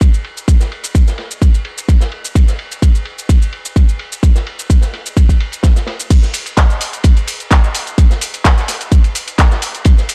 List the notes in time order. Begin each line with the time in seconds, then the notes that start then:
0.01 kick, ride, cabasa
0.14 cabasa
0.24 ride
0.37 cabasa
0.48 kick, ride, cabasa
0.60 snare, cabasa
0.72 ride
0.83 ride, cabasa
0.95 kick, ride, cabasa
1.08 snare, cabasa
1.18 snare, ride
1.31 cabasa
1.42 kick, ride, cabasa
1.54 ride, cabasa
1.65 ride
1.78 ride, cabasa
1.89 kick, ride, cabasa
2.01 snare, cabasa
2.12 ride
2.25 cabasa
2.35 kick, ride, cabasa
2.48 snare, cabasa
2.59 ride
2.72 ride, cabasa
2.82 kick, ride, cabasa
2.95 cabasa
3.05 ride
3.18 cabasa
3.29 kick, ride, cabasa
3.42 cabasa
3.52 ride
3.65 cabasa
3.76 kick, ride, cabasa
3.89 cabasa
3.99 ride
4.12 cabasa
4.23 kick, ride, cabasa
4.36 snare, cabasa
4.46 ride
4.59 ride, cabasa
4.70 kick, ride, cabasa
4.81 snare, cabasa
4.93 snare, ride
5.06 cabasa
5.17 kick, ride, cabasa
5.29 kick, ride, cabasa
5.40 ride
5.52 ride, cabasa
5.63 kick, snare, ride, cabasa
5.76 snare, cabasa
5.87 snare, ride
6.00 cabasa
6.10 kick, closed hi-hat, ride, crash, cabasa
6.23 snare, cabasa
6.33 open hi-hat, ride, cabasa
6.46 closed hi-hat, ride, cabasa
6.57 kick, snare, clap, closed hi-hat, ride, cabasa
6.70 cabasa
6.81 open hi-hat, ride, cabasa
6.93 closed hi-hat, cabasa
7.04 kick, closed hi-hat, ride, cabasa
7.17 closed hi-hat, cabasa
7.27 open hi-hat, ride, cabasa
7.40 closed hi-hat, cabasa
7.51 kick, snare, clap, closed hi-hat, ride, cabasa
7.64 cabasa
7.75 open hi-hat, ride, cabasa
7.87 closed hi-hat, cabasa
7.98 kick, closed hi-hat, ride, cabasa
8.10 snare, cabasa
8.21 open hi-hat, ride, cabasa
8.34 closed hi-hat, ride, cabasa
8.44 kick, snare, clap, closed hi-hat, ride, cabasa
8.57 snare, cabasa
8.68 snare, open hi-hat, ride, cabasa
8.81 closed hi-hat, cabasa
8.91 kick, closed hi-hat, ride, cabasa
9.04 closed hi-hat, ride, cabasa
9.15 open hi-hat, ride, cabasa
9.27 closed hi-hat, ride, cabasa
9.38 kick, snare, clap, closed hi-hat, ride, cabasa
9.51 snare, cabasa
9.62 open hi-hat, ride, cabasa
9.75 closed hi-hat, cabasa
9.85 kick, closed hi-hat, ride, cabasa
9.98 snare, cabasa
10.09 open hi-hat, ride, cabasa